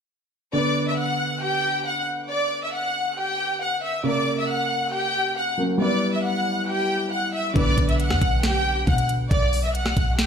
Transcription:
0.53 D3 B3 D4 D5 D6
0.57 B4
0.88 E5 E6
0.99 F#5 F#6
1.43 G4 G5
1.86 F#5 F#6
2.30 D5 D6
2.63 E5 E6
2.74 F#5 F#6
3.18 G4 G5
3.62 F#5 F#6
3.84 E5 E6
4.04 C#3 A#3 D5 D6
4.08 A#4
4.38 E5 E6
4.49 F#5 F#6
4.93 G4 G5
5.37 F#5 F#6
5.58 F#3 A#3 C#4 A#4
5.78 G3 B3 E4 D5 D6
5.82 B4
6.13 E5 E6
6.24 F#5 F#6
6.68 G4 G5
7.12 F#5 F#6
7.34 E5 E6
7.54 B1 D3 B3 D4 D5 D6, kick, closed hi-hat
7.58 B4
7.78 B1, kick, closed hi-hat
7.89 E5 E6, closed hi-hat
8.00 F#5 F#6, closed hi-hat
8.11 F#2, cross-stick, snare
8.22 B1, kick, closed hi-hat
8.43 G4 G5, snare, closed hi-hat
8.87 B2 F#5 F#6, kick, closed hi-hat
8.98 closed hi-hat
9.09 closed hi-hat
9.31 B1 D5 D6, kick, closed hi-hat
9.53 open hi-hat
9.64 E5 E6
9.75 F#5 F#6, closed hi-hat
9.86 cross-stick, snare
9.97 B1, kick, closed hi-hat
10.19 G4 G5, snare, closed hi-hat

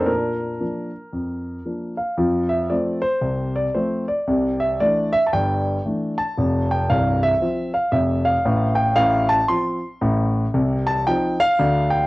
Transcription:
Already playing: F2 F3 A3 D4 D#4 A#4 C5
0.00 C4 A4
0.06 A#2 D4 A#4
0.61 F3 A#3 D4
1.13 F2
1.66 F3 A#3 D4
1.97 F5
2.18 F2 F3
2.49 E5
2.70 F3 A3 C4 D5
3.02 C5
3.21 C2 C3
3.56 D5
3.74 F3 A3 C4 C5
4.08 D5
4.27 C2 C3
4.60 E5
4.80 E3 A3 D4 D5
5.12 E5
5.26 A5
5.33 G1 G2 G5
5.85 E3 A3 D4
6.18 A5
6.37 F1 F2
6.71 G5
6.90 C1 C2 F5
7.23 E5
7.41 F3 C4 F4
7.74 F5
7.92 F1 F2 E5
8.25 F5
8.45 A1 A2
8.75 G5
8.96 A1 A2 F5
9.29 A5
9.48 F3 C4 F4 C6
10.01 A1 A2
10.54 C2 C3
10.87 A5
11.07 F3 C4 D#4 G5
11.40 F5
11.59 D2 D3
11.90 G5

